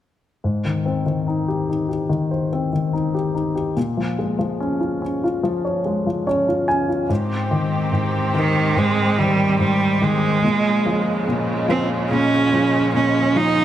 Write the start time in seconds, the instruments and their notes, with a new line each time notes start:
0.44 grand piano G#2
0.65 grand piano D#3
0.86 grand piano C4
1.06 grand piano D#3
1.27 grand piano D#4
1.48 grand piano G4
1.69 grand piano D#4
1.89 grand piano G4
2.09 grand piano D#3
2.31 grand piano C5
2.53 grand piano C4
2.73 grand piano D#3
2.93 grand piano D#4
3.14 grand piano G4
3.35 grand piano D#4
3.55 grand piano G4
3.76 grand piano A#2
3.97 grand piano F3
4.19 grand piano G#3
4.39 grand piano F3
4.60 grand piano C#4
4.81 grand piano F4
5.02 grand piano C#4
5.24 grand piano F4
5.43 grand piano F3
5.65 grand piano C#5
5.85 grand piano G#3
6.06 grand piano F3
6.27 grand piano C#4 C#5
6.48 grand piano F4
6.68 grand piano C#4 G#5
6.89 grand piano F4
7.09 grand piano G#2, string section G#2 D#3 C4 G4
7.51 grand piano D#3
7.92 grand piano G#2
8.34 grand piano D#3, cello D#3
8.76 grand piano G#2, cello G#3
9.18 grand piano D#3, cello G3
9.60 grand piano G#2, cello G3
10.01 grand piano D#3, cello G#3
10.43 string section A#2 C#3 F3 G#3, grand piano A#2
10.86 grand piano F3
11.28 grand piano A#2
11.69 grand piano F3, cello C4
12.11 grand piano A#2, cello C#4
12.53 grand piano F3
12.94 grand piano A#2, cello C#4
13.36 grand piano F3, cello D#4